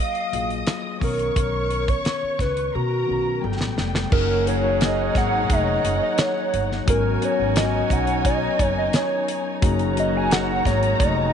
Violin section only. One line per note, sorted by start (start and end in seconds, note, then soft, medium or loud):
0.00 0.99 D#5 medium
0.00 0.99 D#6 medium
1.01 2.70 C#5 medium
1.01 2.70 C#6 medium
2.74 3.42 A#4 medium
2.74 3.41 A#5 medium
3.43 4.11 G3 medium
3.43 4.11 G5 medium
4.13 6.84 D#4 medium
4.13 6.84 C#5 medium
4.13 6.84 F#5 medium
6.88 9.59 D#4 medium
6.88 9.59 C#5 medium
6.88 9.59 G#5 medium
9.62 11.33 D#4 medium
9.62 11.33 C#5 medium
9.62 11.33 A#5 medium